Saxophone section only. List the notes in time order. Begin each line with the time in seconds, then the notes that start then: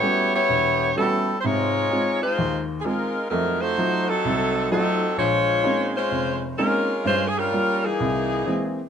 Already playing: B3 E4 G4 C#5
0.35 B3 E4 G4 C#5
0.98 G3 C#4 E4 A4
1.40 C5
1.45 G#3 D#4 F4 C#5
2.21 G#3 D#4 F4 C5
2.80 G#4
2.85 G#3 D#4 F4 A#4
3.29 F#3 C4 D#4 A#4
3.61 A3 D#4 F#4 C5
4.09 F#3 C4 D#4 A4
4.72 F#3 C4 D#4 A4
5.18 G#3 F4 C5 C#5
5.96 G#3 C#4 F4 C5
6.57 G#3 C#4 F4 A#4
7.06 G#3 C#4 F4 C5
7.28 G#4
7.38 G3 C#4 F4 A#4
7.85 E3 A#3 D#4 G#4